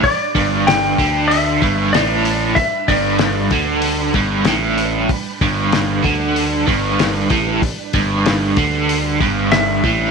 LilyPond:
<<
  \new Staff \with { instrumentName = "Electric slide guitar" } { \time 4/4 \key g \major \tempo 4 = 95 d''4 g''4 e''4 d''4 | e''8 d''2 r4. | r1 | r2. e''4 | }
  \new Staff \with { instrumentName = "String machine" } { \time 4/4 \key g \major <g d' b'>1~ | <g d' b'>1~ | <g d' b'>1~ | <g d' b'>1 | }
  \new Staff \with { instrumentName = "Overdriven electric guitar" } { \clef bass \time 4/4 \key g \major r8 g,4 d4 g,8 a,4 | r8 g,4 d4 g,8 a,4 | r8 g,4 d4 g,4 a,8 | r8 g,4 d4 g,4 a,8 | }
  \new Staff \with { instrumentName = "Fingered electric bass" } { \clef bass \time 4/4 \key g \major r8 g,,4 d,4 g,,8 a,,4 | r8 g,,4 d,4 g,,8 a,,4 | r8 g,,4 d,4 g,,4 a,,8 | r8 g,,4 d,4 g,,4 a,,8 | }
  \new DrumStaff \with { instrumentName = "Drums" } \drummode { \time 4/4 <hho bd>8 <hho bd>8 <hho sn>8 <hho bd>8 hho8 <hho bd>8 <hho sn>8 hho8 | <hho bd>8 <hho bd>8 <hho sn>8 <hho bd>8 hho8 <hho bd>8 <hho sn>8 hho8 | <hho bd>8 <hho bd>8 <hho sn>8 <hho bd>8 hho8 <hho bd>8 <hho sn>8 <hho bd>8 | <hho bd>8 <hho bd>8 <hho sn>8 <hho bd>8 hho8 <hho bd>8 <hho sn>8 <hho bd>8 | }
>>